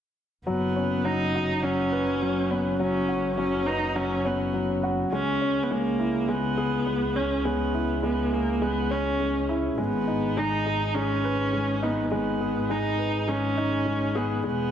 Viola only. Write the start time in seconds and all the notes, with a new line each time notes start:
0.46 B3
1.05 D#4
1.62 C#4
2.50 B3
2.79 C#4
3.38 C#4
3.66 D#4
3.96 C#4
4.25 B3
5.12 C#4
5.63 B3
5.71 A#3
6.28 B3
7.16 C#4
7.45 B3
8.03 B3
8.34 A#3
8.62 B3
8.91 C#4
9.78 B3
10.37 D#4
10.95 C#4
11.83 B3
12.13 B3
12.71 D#4
13.29 C#4
14.17 B3
14.46 B3